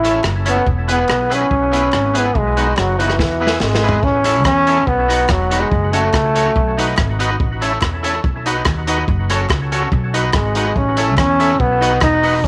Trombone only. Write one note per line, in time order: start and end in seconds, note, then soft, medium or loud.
0.00 0.25 E4 loud
0.49 0.66 B3 loud
0.92 1.36 B3 loud
1.34 2.20 C#4 loud
2.19 2.39 B3 medium
2.37 2.80 G#3 loud
2.78 3.02 F#3 medium
3.01 3.61 E3 medium
3.62 4.05 G#3 medium
4.04 4.45 C#4 loud
4.46 4.89 C#4 loud
4.87 5.32 B3 loud
5.31 5.61 F#3 medium
5.60 5.97 G#3 loud
5.95 7.21 A3 medium
10.35 10.79 G#3 medium
10.77 11.17 C#4 medium
11.18 11.62 C#4 loud
11.60 12.02 B3 loud
12.03 12.46 D#4 loud
12.45 12.48 C#4 loud